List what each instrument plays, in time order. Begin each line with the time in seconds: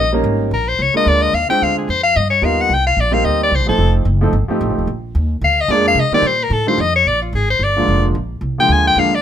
Already playing: upright bass A#1, soprano saxophone D#5
0.12 grand piano G3 A#3 C#4 D#4 A#4
0.24 upright bass G#1
0.51 upright bass A#1, soprano saxophone A#4
0.68 soprano saxophone C5
0.79 upright bass C2, soprano saxophone C#5
0.94 grand piano G#3 A#3 D4 F4 A#4, soprano saxophone D#5, muted upright bass stroke
1.06 upright bass D2, soprano saxophone D5
1.22 soprano saxophone D#5
1.33 upright bass D#2, soprano saxophone F5
1.49 grand piano G#3 C4 D4 F4 C5, soprano saxophone G5, muted upright bass stroke
1.62 upright bass D2, soprano saxophone F5
1.78 soprano saxophone G#4
1.89 upright bass F2, soprano saxophone C5
2.03 soprano saxophone F5
2.16 upright bass G2, soprano saxophone D#5
2.30 soprano saxophone C#5
2.42 upright bass D#2, grand piano G3 B3 D#4 F4 A#4, soprano saxophone F5
2.61 soprano saxophone F#5
2.69 upright bass C2
2.74 soprano saxophone G5
2.87 soprano saxophone F5
2.97 upright bass A#1, soprano saxophone D5
3.11 grand piano G3 A#3 C4 D#4 A#4, soprano saxophone F5
3.25 upright bass D2, soprano saxophone D#5
3.43 soprano saxophone D5
3.51 upright bass C2
3.55 soprano saxophone C5
3.59 upright bass A#1
3.66 upright bass G1, grand piano F3 A3 C4 D#4 C5, soprano saxophone A4
3.78 upright bass F1
4.05 upright bass F#1
4.21 grand piano F3 A3 C4 D#4 A4
4.33 upright bass G1
4.48 grand piano F3 A3 C4 D#4 G4, muted upright bass stroke
4.61 upright bass A1
4.70 upright bass F1
4.78 upright bass D#1
4.87 upright bass A#1
5.15 upright bass D#2
5.41 upright bass D2, soprano saxophone F5
5.61 soprano saxophone D#5
5.68 upright bass F2, grand piano F3 G#3 A#3 D4 G#4, soprano saxophone D5
5.88 soprano saxophone F5
5.95 upright bass C3
6.00 soprano saxophone D#5
6.12 grand piano D#3 G3 A#3 C4 G4, soprano saxophone D5, muted upright bass stroke
6.22 upright bass A#2
6.27 soprano saxophone C5
6.43 soprano saxophone A#4
6.50 upright bass A2, soprano saxophone A4
6.67 grand piano D#3 G3 A3 D4 F4, soprano saxophone C5
6.78 upright bass F2, soprano saxophone D#5
6.96 soprano saxophone C#5
7.05 upright bass A#1, soprano saxophone D5
7.22 soprano saxophone F4
7.33 upright bass G#1, soprano saxophone G#4
7.50 soprano saxophone C5
7.59 upright bass G1
7.63 soprano saxophone D5
7.76 grand piano D3 F3 G#3 A#3 F4
7.88 upright bass F1
8.15 upright bass A#1
8.41 upright bass C2
8.58 grand piano D3 F3 G#3 A#3 F4, soprano saxophone G5
8.69 upright bass D2, soprano saxophone G#5
8.87 soprano saxophone G5
8.95 upright bass D#2, grand piano D3 F3 G#3 A#3 D4, soprano saxophone F5
9.15 soprano saxophone D5